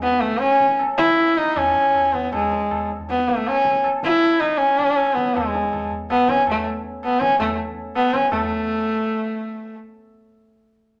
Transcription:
0.03 sarangi B3, tabla te
0.13 tabla te
0.21 sarangi A3, tabla ke
0.32 tabla te
0.38 sarangi C#4, tabla te
0.51 tabla te
0.60 tabla ke
0.70 tabla te
0.79 tabla na
0.98 sarangi E4, tabla ke
1.08 tabla te
1.18 tabla te
1.27 tabla te
1.37 sarangi D#4, tabla ke
1.47 tabla te
1.56 sarangi C#4, tabla na, tabla ge
1.75 tabla ge
1.94 tabla na, tabla ge
2.14 sarangi B3, tabla ge
2.33 sarangi G#3, tabla na, tabla ge
2.52 tabla te
2.71 tabla na, tabla ge
2.90 tabla te
3.00 tabla ge
3.09 sarangi B3, tabla te
3.19 tabla te
3.28 sarangi A3, tabla ke
3.37 tabla te
3.46 sarangi C#4, tabla na
3.65 tabla ke
3.84 tabla na
4.03 sarangi E4, tabla ke
4.12 tabla te
4.22 tabla na
4.40 sarangi D#4, tabla ke
4.58 sarangi C#4, tabla te
4.70 tabla te
4.79 tabla ke
4.89 tabla te
4.98 tabla na
5.15 sarangi B3, tabla ke
5.35 sarangi G#3, tabla na, tabla ge
5.55 tabla te
5.73 tabla na, tabla ge
5.91 tabla ge
6.10 sarangi B3, tabla na
6.29 sarangi C#4, tabla ke
6.47 sarangi A3, tabla na, tabla ge
7.03 sarangi B3, tabla na
7.20 sarangi C#4, tabla ke
7.40 sarangi A3, tabla na, tabla ge
7.95 sarangi B3, tabla na
8.14 sarangi C#4, tabla ke
8.32 sarangi A3, tabla na, tabla ge

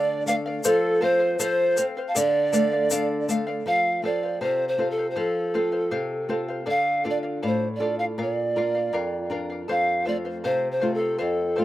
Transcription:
Already playing: nylon-string guitar D3 D4, charango A4 D5 F5, quena D5, pan flute D5
0.26 nylon-string guitar A3, charango A4 D5 F5, quena F5, pan flute F5, shaker
0.46 charango D5 F5
0.64 nylon-string guitar F3, charango A4 C5 F5, pan flute A4, quena A4, shaker
1.01 nylon-string guitar C4, charango A4 C5 F5, pan flute C5, quena C5
1.20 charango C5 F5
1.39 nylon-string guitar F3, charango A4 C5 F5, quena C5, pan flute C5, shaker
1.76 nylon-string guitar C4, charango A4 C5 F5, shaker
1.97 charango C5 F5
2.08 pan flute F5, quena A5
2.15 nylon-string guitar D3, charango A4 D5 F5, quena D5, pan flute D5, shaker
2.52 nylon-string guitar A3, charango A4 D5 F5, shaker
2.72 charango D5 F5
2.91 nylon-string guitar D4, charango A4 D5 F5, shaker
3.29 nylon-string guitar A3, charango A4 D5 F5, shaker
3.47 charango D5 F5
3.66 nylon-string guitar F3, charango A4 C5 F5, pan flute F5
4.02 nylon-string guitar C4 F4 A4, charango A4 C5 F5, pan flute D5
4.23 charango C5 F5
4.41 nylon-string guitar C3, charango A4 C5 F5, pan flute C5
4.68 pan flute C5
4.78 nylon-string guitar C4 F4 A4, charango A4 C5 F5
4.91 pan flute A4
4.98 charango C5 F5
5.11 pan flute C5
5.16 nylon-string guitar F3, charango A4 C5 F5, pan flute A4
5.54 nylon-string guitar C4 F4 A4, charango A4 C5 F5
5.72 charango C5 F5
5.91 nylon-string guitar C3, charango A4 C5 F5
6.29 nylon-string guitar C4 F4 A4, charango A4 C5 F5
6.48 charango C5 F5
6.66 nylon-string guitar D3, charango A4 D5 F5
6.70 pan flute F5
7.04 nylon-string guitar D4 F4 A4, charango A4 D5 F5
7.10 pan flute D5
7.23 charango D5 F5
7.43 nylon-string guitar A2, charango A4 D5 F5
7.47 pan flute C5
7.76 nylon-string guitar D4, pan flute D5
7.80 nylon-string guitar F4 A4, charango A4 D5 F5
7.99 charango D5 F5, pan flute F5
8.18 nylon-string guitar A#2, charango A#4 D5 F5
8.23 pan flute D5
8.56 nylon-string guitar D4 F4 A#4, charango A#4 D5 F5
8.75 charango D5 F5
8.93 nylon-string guitar F2, charango A#4 D5 F5
9.30 nylon-string guitar D4 F4 A#4, charango A#4 D5 F5
9.50 charango D5 F5
9.68 nylon-string guitar F2, charango A4 C5 F5, pan flute F5
10.05 nylon-string guitar A3 C4 F4, charango A4 C5 F5, pan flute D5
10.25 charango C5 F5
10.44 nylon-string guitar C3, charango A4 C5 F5, pan flute C5
10.72 pan flute C5
10.80 nylon-string guitar A3 C4 F4, charango A4 C5 F5
10.94 pan flute A4
10.99 charango C5 F5
11.18 nylon-string guitar F2, charango A4 C5 F5, pan flute A4
11.56 nylon-string guitar A3 C4 F4, charango A4 C5 F5

